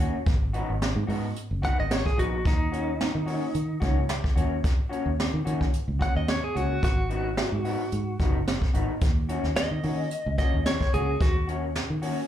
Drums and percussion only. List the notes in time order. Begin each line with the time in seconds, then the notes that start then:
0.26 kick, closed hi-hat
0.54 closed hi-hat
0.82 snare, closed hi-hat
1.09 open hi-hat
1.36 closed hi-hat
1.63 kick, closed hi-hat
1.91 snare, closed hi-hat
2.06 kick
2.19 closed hi-hat
2.45 kick, closed hi-hat
2.73 closed hi-hat
3.00 snare, closed hi-hat
3.27 open hi-hat
3.54 closed hi-hat
3.82 kick, closed hi-hat
4.09 snare, closed hi-hat
4.24 kick
4.37 closed hi-hat
4.64 kick, closed hi-hat
4.92 closed hi-hat
5.19 snare, closed hi-hat
5.46 closed hi-hat
5.61 kick
5.73 closed hi-hat
6.01 kick, closed hi-hat
6.28 snare, closed hi-hat
6.56 closed hi-hat
6.83 kick, closed hi-hat
7.10 closed hi-hat
7.37 snare, closed hi-hat
7.65 open hi-hat
7.92 closed hi-hat
8.20 kick, closed hi-hat
8.47 snare, closed hi-hat
8.62 kick
8.74 closed hi-hat
9.01 kick, closed hi-hat
9.29 closed hi-hat
9.44 snare
9.56 snare, closed hi-hat
9.83 open hi-hat
10.11 closed hi-hat
10.38 kick, closed hi-hat
10.65 snare, closed hi-hat
10.81 kick, snare
10.93 closed hi-hat
11.20 kick, closed hi-hat
11.48 closed hi-hat
11.75 snare, closed hi-hat
12.02 open hi-hat